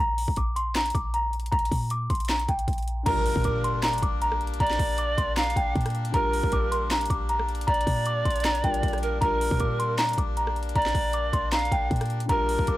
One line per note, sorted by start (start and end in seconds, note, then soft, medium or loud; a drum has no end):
0.00 0.27 A#1 loud
0.00 0.35 A#5 loud
0.18 open hi-hat medium
0.28 0.92 A#1 loud
0.28 kick loud
0.36 0.55 D6 medium
0.36 kick medium
0.36 closed hi-hat medium
0.56 0.74 C6 medium
0.56 closed hi-hat medium
0.75 0.94 A#5 medium
0.75 snare loud
0.75 clap loud
0.75 closed hi-hat soft
0.81 closed hi-hat medium
0.86 closed hi-hat medium
0.90 closed hi-hat medium
0.95 1.50 A#1 loud
0.95 1.13 D6 medium
0.95 kick loud
0.95 closed hi-hat medium
1.14 1.32 A#5 medium
1.14 closed hi-hat medium
1.33 closed hi-hat soft
1.40 closed hi-hat soft
1.46 closed hi-hat medium
1.52 1.71 A#1 loud
1.52 1.88 A#5 loud
1.52 kick loud
1.52 closed hi-hat medium
1.59 closed hi-hat medium
1.65 closed hi-hat medium
1.72 2.09 A#2 loud
1.72 kick loud
1.72 open hi-hat loud
1.90 2.09 D6 medium
1.90 closed hi-hat medium
2.10 2.47 A#1 loud
2.10 2.28 C6 medium
2.10 kick loud
2.10 closed hi-hat medium
2.15 closed hi-hat medium
2.20 closed hi-hat medium
2.25 closed hi-hat medium
2.29 2.48 A#5 medium
2.29 snare loud
2.29 clap loud
2.39 closed hi-hat medium
2.49 2.67 A#1 loud
2.49 3.03 G5 medium
2.49 kick loud
2.49 closed hi-hat medium
2.59 closed hi-hat medium
2.68 3.05 A#1 loud
2.68 kick medium
2.68 closed hi-hat medium
2.73 closed hi-hat medium
2.78 closed hi-hat soft
2.83 closed hi-hat soft
2.88 closed hi-hat medium
3.03 3.35 A#1 loud
3.03 6.08 D3 medium
3.03 6.10 G3 medium
3.03 12.25 G3 medium
3.03 12.25 A#3 medium
3.03 12.25 D4 medium
3.03 3.79 A#4 loud
3.03 3.42 A#5 loud
3.03 kick loud
3.03 closed hi-hat medium
3.03 crash loud
3.03 impact medium
3.08 6.11 F4 medium
3.08 6.12 A#4 medium
3.26 open hi-hat loud
3.36 4.00 A#2 loud
3.36 kick loud
3.44 3.63 D6 medium
3.44 kick loud
3.44 closed hi-hat medium
3.64 3.82 C6 medium
3.64 closed hi-hat medium
3.83 4.01 A#5 loud
3.83 snare loud
3.83 clap loud
3.83 closed hi-hat soft
3.88 closed hi-hat medium
3.93 closed hi-hat medium
3.98 closed hi-hat medium
4.02 4.58 A#1 loud
4.02 4.21 D6 medium
4.02 kick loud
4.02 closed hi-hat medium
4.22 4.40 A#5 medium
4.22 closed hi-hat medium
4.32 cross-stick loud
4.41 closed hi-hat soft
4.47 closed hi-hat soft
4.54 closed hi-hat medium
4.60 4.79 A#1 loud
4.60 5.33 D5 loud
4.60 4.96 A#5 loud
4.60 kick loud
4.60 closed hi-hat medium
4.67 snare medium
4.67 closed hi-hat medium
4.73 closed hi-hat medium
4.79 5.16 A#1 loud
4.79 kick loud
4.79 open hi-hat loud
4.98 5.17 D6 medium
4.98 closed hi-hat medium
5.18 5.55 A#1 loud
5.18 5.36 C6 medium
5.18 kick loud
5.18 closed hi-hat medium
5.37 5.73 F5 medium
5.37 5.55 A#5 medium
5.37 snare loud
5.37 clap loud
5.37 closed hi-hat soft
5.43 closed hi-hat medium
5.50 closed hi-hat medium
5.56 5.75 A#1 loud
5.56 6.11 G5 medium
5.56 kick loud
5.56 closed hi-hat medium
5.76 6.12 A#2 loud
5.76 kick medium
5.76 closed hi-hat medium
5.81 closed hi-hat medium
5.86 cross-stick loud
5.86 closed hi-hat medium
5.90 closed hi-hat medium
5.95 closed hi-hat medium
6.05 closed hi-hat medium
6.10 6.42 A#1 loud
6.10 8.58 D3 medium
6.10 8.59 G3 medium
6.10 kick loud
6.10 closed hi-hat medium
6.14 8.60 F4 medium
6.14 6.87 A#4 loud
6.14 8.62 A#4 medium
6.14 6.50 A#5 loud
6.33 open hi-hat loud
6.43 7.07 A#1 loud
6.43 kick loud
6.52 6.71 D6 medium
6.52 kick loud
6.52 closed hi-hat medium
6.72 6.90 C6 medium
6.72 closed hi-hat medium
6.91 7.09 A#5 medium
6.91 snare loud
6.91 clap loud
6.91 closed hi-hat soft
6.96 closed hi-hat medium
7.01 closed hi-hat medium
7.06 closed hi-hat medium
7.10 7.65 A#1 loud
7.10 7.28 D6 medium
7.10 kick loud
7.10 closed hi-hat medium
7.29 7.48 A#5 medium
7.29 closed hi-hat medium
7.39 cross-stick loud
7.49 closed hi-hat soft
7.55 closed hi-hat soft
7.61 closed hi-hat medium
7.67 7.86 A#1 loud
7.67 8.98 D5 loud
7.67 8.04 A#5 loud
7.67 kick loud
7.67 closed hi-hat medium
7.74 closed hi-hat medium
7.81 closed hi-hat medium
7.87 8.24 A#2 loud
7.87 kick loud
7.87 open hi-hat loud
8.06 8.25 D6 medium
8.06 closed hi-hat medium
8.25 8.62 A#1 loud
8.25 8.44 C6 medium
8.25 kick loud
8.25 closed hi-hat medium
8.30 closed hi-hat medium
8.36 closed hi-hat medium
8.40 closed hi-hat medium
8.45 8.63 A#5 medium
8.45 cross-stick medium
8.45 snare loud
8.45 clap loud
8.45 closed hi-hat soft
8.55 closed hi-hat medium
8.62 8.82 A#1 loud
8.62 9.17 D3 soft
8.62 9.20 G3 soft
8.62 9.22 F4 soft
8.62 9.23 A#4 medium
8.62 9.18 G5 medium
8.62 kick loud
8.62 closed hi-hat medium
8.74 closed hi-hat medium
8.83 9.20 A#1 loud
8.83 kick loud
8.83 closed hi-hat medium
8.88 closed hi-hat medium
8.93 cross-stick medium
8.93 closed hi-hat soft
8.98 closed hi-hat soft
9.02 9.21 A#4 medium
9.02 closed hi-hat medium
9.19 9.50 A#1 loud
9.19 12.24 D3 medium
9.19 12.25 G3 medium
9.19 9.95 A#4 loud
9.19 9.57 A#5 loud
9.19 kick loud
9.19 closed hi-hat medium
9.24 12.26 F4 medium
9.24 12.28 A#4 medium
9.41 open hi-hat loud
9.51 10.15 A#2 loud
9.51 kick loud
9.60 9.78 D6 medium
9.60 kick medium
9.60 closed hi-hat medium
9.79 9.98 C6 medium
9.79 closed hi-hat medium
9.99 10.17 A#5 loud
9.99 snare loud
9.99 clap loud
9.99 closed hi-hat soft
10.04 closed hi-hat medium
10.09 closed hi-hat medium
10.13 closed hi-hat medium
10.18 10.73 A#1 loud
10.18 10.36 D6 medium
10.18 kick loud
10.18 closed hi-hat medium
10.37 10.55 A#5 medium
10.37 closed hi-hat medium
10.47 cross-stick loud
10.56 closed hi-hat soft
10.63 closed hi-hat soft
10.69 closed hi-hat medium
10.76 10.94 A#1 loud
10.76 11.48 D5 loud
10.76 11.12 A#5 loud
10.76 kick loud
10.76 closed hi-hat medium
10.82 snare medium
10.82 closed hi-hat medium
10.88 closed hi-hat medium
10.95 11.32 A#1 loud
10.95 kick loud
10.95 open hi-hat loud
11.13 11.32 D6 medium
11.13 closed hi-hat medium
11.33 11.70 A#1 loud
11.33 11.51 C6 medium
11.33 kick loud
11.33 closed hi-hat medium
11.52 11.89 F5 medium
11.52 11.70 A#5 medium
11.52 snare loud
11.52 clap loud
11.52 closed hi-hat soft
11.59 closed hi-hat medium
11.65 closed hi-hat medium
11.72 11.90 A#1 loud
11.72 12.26 G5 medium
11.72 kick loud
11.72 closed hi-hat medium
11.91 12.28 A#2 loud
11.91 kick loud
11.91 closed hi-hat medium
11.96 closed hi-hat medium
12.01 cross-stick loud
12.01 closed hi-hat medium
12.06 closed hi-hat medium
12.10 closed hi-hat medium
12.20 closed hi-hat medium
12.25 12.58 A#1 loud
12.25 12.77 D3 medium
12.25 12.77 G3 medium
12.25 12.77 A#3 medium
12.25 12.77 D4 medium
12.25 12.65 A#5 loud
12.25 kick loud
12.25 closed hi-hat medium
12.30 12.77 F4 medium
12.30 12.77 A#4 loud
12.30 12.77 A#4 medium
12.49 open hi-hat loud
12.59 12.67 A#1 loud
12.59 kick loud
12.67 12.77 A#1 loud
12.67 12.77 D6 medium
12.67 kick loud
12.67 closed hi-hat medium